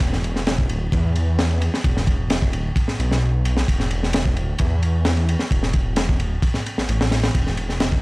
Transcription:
0.00 0.72 E1 loud
0.00 kick loud
0.00 ride medium
0.13 snare soft
0.24 ride medium
0.36 snare soft
0.47 snare loud
0.47 ride medium
0.58 kick medium
0.69 0.88 D1 medium
0.69 ride medium
0.92 1.69 E2 loud
0.92 kick loud
0.92 ride medium
1.16 ride medium
1.39 snare loud
1.39 ride medium
1.51 ride soft
1.62 ride medium
1.74 snare medium
1.84 2.55 E1 loud
1.84 kick loud
1.84 ride medium
1.97 snare medium
2.07 kick medium
2.07 ride medium
2.30 snare loud
2.30 ride medium
2.42 kick loud
2.53 2.71 D1 loud
2.53 ride medium
2.76 kick loud
2.76 ride medium
2.88 snare soft
2.99 3.64 B1 loud
2.99 ride medium
3.11 snare medium
3.45 ride medium
3.57 snare medium
3.68 4.38 E1 loud
3.68 kick loud
3.68 ride medium
3.80 snare soft
3.91 ride medium
4.03 snare soft
4.13 snare loud
4.13 ride medium
4.25 kick loud
4.36 4.54 D1 medium
4.36 ride medium
4.59 5.36 E2 loud
4.59 kick loud
4.59 ride medium
4.83 ride medium
5.05 snare loud
5.05 ride medium
5.17 ride soft
5.29 ride medium
5.39 snare soft
5.51 6.21 E1 loud
5.51 kick loud
5.51 ride medium
5.63 snare medium
5.73 kick medium
5.73 ride medium
5.96 snare loud
5.96 ride medium
6.09 kick loud
6.20 6.38 D1 loud
6.20 ride medium
6.42 kick loud
6.42 ride medium
6.54 snare soft
6.66 ride medium
6.78 6.86 A1 soft
6.78 snare medium
6.89 7.30 A1 medium
6.89 ride medium
7.01 snare loud
7.11 snare loud
7.11 ride medium
7.23 snare loud
7.23 ride medium
7.35 8.02 E1 loud
7.35 kick loud
7.35 ride medium
7.47 snare soft
7.57 ride medium
7.69 snare soft
7.80 snare loud
7.80 ride medium
7.92 kick medium

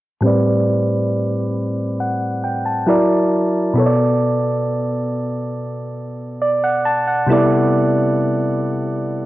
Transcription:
0.20 2.83 A2 medium
0.20 2.83 G3 medium
0.20 2.84 C4 medium
0.25 2.85 B4 medium
0.25 2.86 D5 medium
2.00 2.42 F#5 medium
2.44 2.65 G5 medium
2.66 3.08 A5 medium
2.87 3.75 F#3 medium
2.87 3.76 E4 medium
2.87 3.76 A#4 medium
2.87 3.77 D5 medium
3.73 6.80 B2 medium
3.73 6.81 B3 medium
3.73 6.82 A4 medium
3.80 3.84 C#5 medium
3.86 6.40 D5 medium
6.42 6.62 D5 medium
6.64 6.84 F#5 medium
6.85 7.06 A5 medium
7.07 7.49 F#5 medium
7.27 9.26 C3 medium
7.27 9.26 G3 medium
7.27 9.26 B3 medium
7.27 9.26 E4 medium
7.31 9.26 A4 medium
7.31 9.26 D5 medium

